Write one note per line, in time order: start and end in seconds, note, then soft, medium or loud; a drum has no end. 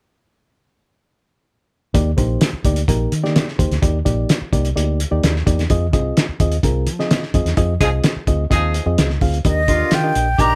1.94 2.13 D#2 medium
1.94 2.10 A#3 medium
1.94 2.10 D#4 medium
1.94 2.10 G4 medium
1.94 2.10 D5 medium
1.94 kick loud
1.94 closed hi-hat medium
2.17 2.36 A#1 medium
2.17 2.49 A#3 medium
2.17 2.49 D#4 medium
2.17 2.49 G4 medium
2.17 2.49 C5 medium
2.17 kick medium
2.17 closed hi-hat medium
2.41 snare loud
2.41 closed hi-hat medium
2.53 muted fingered electric bass stroke soft
2.64 2.83 D2 medium
2.64 2.81 A#3 medium
2.64 2.81 D#4 medium
2.64 2.81 G4 medium
2.64 2.81 D5 medium
2.64 kick medium
2.64 closed hi-hat medium
2.76 closed hi-hat medium
2.88 3.06 A#1 medium
2.88 3.12 A#3 medium
2.88 3.12 D#4 medium
2.88 3.12 G4 medium
2.88 3.12 A#4 medium
2.88 kick medium
2.88 closed hi-hat medium
3.12 3.40 D#3 medium
3.12 closed hi-hat medium
3.23 3.47 A#3 medium
3.23 3.47 D#4 medium
3.23 3.47 G4 medium
3.23 3.47 D5 medium
3.23 snare soft
3.36 snare loud
3.36 closed hi-hat medium
3.48 snare soft
3.59 3.68 D#2 medium
3.59 3.74 A#3 medium
3.59 3.74 D#4 medium
3.59 3.75 G4 medium
3.59 3.75 C5 medium
3.59 kick medium
3.59 closed hi-hat medium
3.71 3.80 D2 medium
3.71 snare soft
3.71 closed hi-hat soft
3.82 4.01 D#2 medium
3.82 3.98 A#3 medium
3.82 3.98 D#4 medium
3.82 3.98 G4 medium
3.82 3.98 D5 medium
3.82 kick loud
3.82 closed hi-hat medium
4.05 4.24 A#1 medium
4.05 4.37 A#3 medium
4.05 4.37 D#4 medium
4.05 4.37 G4 medium
4.05 4.37 D5 medium
4.05 kick medium
4.05 closed hi-hat medium
4.29 snare loud
4.29 closed hi-hat medium
4.42 muted fingered electric bass stroke soft
4.52 4.71 C2 medium
4.52 4.68 A#3 medium
4.52 4.68 D#4 medium
4.52 4.69 G4 medium
4.52 4.68 D5 medium
4.52 kick medium
4.52 closed hi-hat medium
4.65 closed hi-hat medium
4.76 5.04 D2 medium
4.76 4.99 A#3 medium
4.76 5.00 D#4 medium
4.76 5.00 G4 medium
4.76 5.00 D5 medium
4.76 closed hi-hat medium
5.00 closed hi-hat medium
5.11 5.21 D#2 medium
5.11 5.35 A#3 medium
5.11 5.35 D#4 medium
5.11 5.35 G4 medium
5.11 5.35 D5 medium
5.23 5.42 D#2 medium
5.23 snare loud
5.23 closed hi-hat medium
5.36 snare soft
5.46 5.65 E2 medium
5.46 5.62 A#3 medium
5.46 5.62 D#4 medium
5.46 5.62 G4 medium
5.46 5.62 D5 medium
5.46 kick medium
5.46 closed hi-hat medium
5.59 snare soft
5.59 closed hi-hat soft
5.70 5.93 F2 loud
5.70 5.86 C4 medium
5.70 5.86 F4 medium
5.70 5.86 G#4 medium
5.70 5.86 D#5 medium
5.70 kick loud
5.70 closed hi-hat medium
5.93 6.12 C2 medium
5.93 6.25 C4 medium
5.93 6.25 F4 medium
5.93 6.25 G#4 medium
5.93 6.25 D#5 medium
5.93 kick medium
5.93 closed hi-hat medium
6.17 snare loud
6.17 closed hi-hat medium
6.29 muted fingered electric bass stroke soft
6.40 6.59 D#2 medium
6.40 6.56 C4 medium
6.40 6.56 F4 medium
6.40 6.56 G#4 medium
6.40 6.56 D#5 medium
6.40 kick medium
6.40 closed hi-hat medium
6.52 closed hi-hat medium
6.63 6.88 C2 medium
6.63 6.87 C4 medium
6.63 6.87 F4 medium
6.63 6.88 G#4 medium
6.63 6.88 A#4 medium
6.63 kick medium
6.63 closed hi-hat medium
6.87 7.14 F3 medium
6.87 closed hi-hat medium
6.99 7.22 C4 medium
6.99 7.23 F4 medium
6.99 7.23 G#4 medium
6.99 7.23 D#5 medium
6.99 snare soft
7.11 snare loud
7.11 closed hi-hat medium
7.23 snare soft
7.34 7.43 F2 medium
7.34 7.50 C4 medium
7.34 7.50 F4 medium
7.34 7.50 G#4 medium
7.34 7.50 D#5 medium
7.34 kick medium
7.34 closed hi-hat medium
7.46 7.55 E2 medium
7.46 snare soft
7.46 closed hi-hat soft
7.57 7.76 F2 loud
7.57 7.73 C4 medium
7.57 7.73 F4 medium
7.57 7.73 G#4 medium
7.57 7.73 D#5 medium
7.57 kick loud
7.57 closed hi-hat medium
7.81 7.99 C2 medium
7.81 7.89 F3 medium
7.81 8.12 C4 medium
7.81 7.89 D#4 medium
7.81 8.12 F4 medium
7.81 7.89 G#4 loud
7.81 8.12 G#4 medium
7.81 8.12 D#5 medium
7.81 kick medium
7.81 closed hi-hat medium
8.04 snare loud
8.04 closed hi-hat medium
8.16 muted fingered electric bass stroke soft
8.27 8.46 D2 medium
8.27 8.43 C4 medium
8.27 8.43 F4 medium
8.27 8.43 G#4 medium
8.27 8.44 D#5 medium
8.27 kick medium
8.27 closed hi-hat medium
8.50 8.78 D#2 medium
8.50 8.85 F3 medium
8.50 8.74 C4 medium
8.50 8.85 D#4 medium
8.50 8.74 F4 medium
8.50 8.74 G#4 medium
8.50 8.85 G#4 medium
8.50 8.74 D#5 medium
8.50 kick medium
8.50 closed hi-hat medium
8.74 closed hi-hat medium
8.86 8.95 F2 medium
8.86 9.10 C4 medium
8.86 9.10 F4 medium
8.86 9.10 G#4 medium
8.86 9.10 D#5 medium
8.98 9.16 C#2 medium
8.98 snare loud
8.98 closed hi-hat medium
9.10 snare soft
9.21 9.40 D2 medium
9.21 9.37 C4 medium
9.21 9.37 F4 medium
9.21 9.37 G#4 medium
9.21 9.37 F5 medium
9.21 kick medium
9.21 open hi-hat medium
9.34 closed hi-hat soft
9.45 9.82 D#2 medium
9.45 9.61 D4 medium
9.45 9.61 G4 medium
9.45 9.61 A#4 medium
9.45 9.61 D#5 medium
9.45 9.96 D#5 medium
9.45 kick loud
9.45 closed hi-hat medium
9.68 10.13 D3 medium
9.68 10.13 A#3 medium
9.68 9.92 D4 medium
9.68 10.13 F4 loud
9.68 9.92 G4 medium
9.68 9.92 A#4 medium
9.68 9.92 D#5 medium
9.68 kick medium
9.68 closed hi-hat medium
9.91 10.10 D#3 medium
9.91 10.42 G5 medium
9.91 snare loud
9.91 closed hi-hat medium
10.04 10.27 D4 medium
10.04 10.27 G4 medium
10.04 10.27 A#4 medium
10.04 10.27 D#5 medium
10.15 10.34 A#1 medium
10.15 closed hi-hat medium
10.38 10.55 A#1 medium
10.38 10.55 D#3 medium
10.38 10.55 D4 loud
10.38 10.55 D4 medium
10.38 10.55 G4 loud
10.38 10.55 G4 medium
10.38 10.55 A#4 medium
10.38 10.55 D#5 medium
10.38 10.55 A#5 loud
10.38 kick medium
10.38 closed hi-hat medium